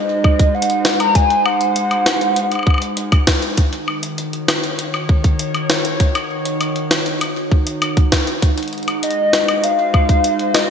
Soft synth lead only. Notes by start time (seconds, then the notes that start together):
Already playing: D#5
0.55 F#5
1.00 A#5
1.15 G#5
1.46 F#5
9.03 D#5
9.64 F5
10.55 D#5